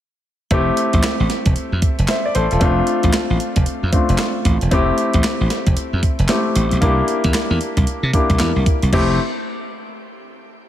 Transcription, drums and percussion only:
0.51 kick, closed hi-hat
0.77 closed hi-hat
0.93 kick, closed hi-hat
1.03 snare, clap, closed hi-hat
1.30 snare, closed hi-hat
1.46 kick, closed hi-hat
1.56 closed hi-hat
1.82 kick, closed hi-hat
1.99 closed hi-hat
2.08 snare, clap, closed hi-hat
2.35 closed hi-hat
2.51 closed hi-hat
2.61 kick, closed hi-hat
2.87 closed hi-hat
3.03 kick, closed hi-hat
3.13 snare, clap, closed hi-hat
3.40 closed hi-hat
3.56 kick, closed hi-hat
3.66 closed hi-hat
3.93 kick, closed hi-hat
4.09 closed hi-hat
4.18 snare, clap, closed hi-hat
4.45 kick, closed hi-hat
4.61 closed hi-hat
4.71 kick, closed hi-hat
4.98 closed hi-hat
5.13 kick, closed hi-hat
5.24 snare, clap, closed hi-hat
5.50 snare, closed hi-hat
5.67 kick, closed hi-hat
5.77 closed hi-hat
6.03 kick, closed hi-hat
6.19 closed hi-hat
6.28 snare, clap, closed hi-hat
6.55 closed hi-hat
6.71 closed hi-hat
6.82 kick, closed hi-hat
7.08 closed hi-hat
7.24 kick, closed hi-hat
7.34 snare, clap, closed hi-hat
7.61 closed hi-hat
7.77 kick, closed hi-hat
7.87 closed hi-hat
8.13 kick, closed hi-hat
8.30 kick, closed hi-hat
8.39 snare, clap, closed hi-hat
8.66 kick, closed hi-hat
8.82 closed hi-hat
8.93 kick, crash

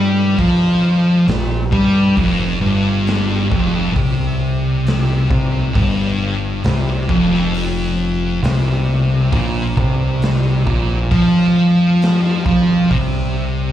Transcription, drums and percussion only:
0.39 kick, open hi-hat
1.28 snare, open hi-hat
1.72 kick
2.17 kick, open hi-hat
3.07 snare, open hi-hat
3.52 kick
3.96 kick, open hi-hat
4.87 snare, open hi-hat
5.31 kick
5.75 kick, open hi-hat
6.64 snare, open hi-hat
7.09 kick
7.34 snare
7.54 open hi-hat
8.44 snare, open hi-hat
9.32 kick, open hi-hat
9.77 kick
10.22 snare, open hi-hat
10.67 kick
11.11 kick, open hi-hat
12.02 snare, open hi-hat
12.46 kick
12.91 kick, open hi-hat

